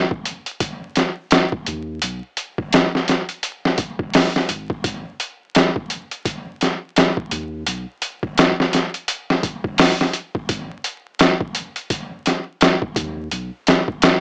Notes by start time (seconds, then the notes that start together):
0.11 kick
0.26 closed hi-hat
0.46 closed hi-hat
0.61 kick, closed hi-hat
0.96 snare, closed hi-hat
1.31 snare, closed hi-hat
1.52 kick
1.66 D#2, closed hi-hat
2.02 B1, closed hi-hat
2.37 closed hi-hat
2.58 kick
2.72 snare, closed hi-hat
2.95 snare
3.08 snare, closed hi-hat
3.29 closed hi-hat
3.43 closed hi-hat
3.65 snare
3.78 kick, closed hi-hat
3.99 E1, kick
4.13 snare, open hi-hat
4.36 snare
4.49 G#1, closed hi-hat
4.70 kick
4.84 G#1, kick, closed hi-hat
5.20 closed hi-hat
5.55 snare, closed hi-hat
5.76 kick
5.90 closed hi-hat
6.11 closed hi-hat
6.25 kick, closed hi-hat
6.61 snare, closed hi-hat
6.96 snare, closed hi-hat
7.17 kick
7.31 D#2, closed hi-hat
7.67 B1, closed hi-hat
8.02 closed hi-hat
8.23 kick
8.38 snare, closed hi-hat
8.60 snare
8.73 snare, closed hi-hat
8.94 closed hi-hat
9.08 closed hi-hat
9.30 snare
9.43 kick, closed hi-hat
9.64 E1, kick
9.78 snare, open hi-hat
10.01 snare
10.13 closed hi-hat
10.35 kick
10.49 G#1, kick, closed hi-hat
10.84 closed hi-hat
11.19 snare, closed hi-hat
11.41 kick
11.55 closed hi-hat
11.76 closed hi-hat
11.90 kick, closed hi-hat
12.26 snare, closed hi-hat
12.61 snare, closed hi-hat
12.82 kick
12.96 D#2, kick, closed hi-hat
13.31 B1, closed hi-hat
13.67 snare, closed hi-hat
13.88 kick
14.02 snare, closed hi-hat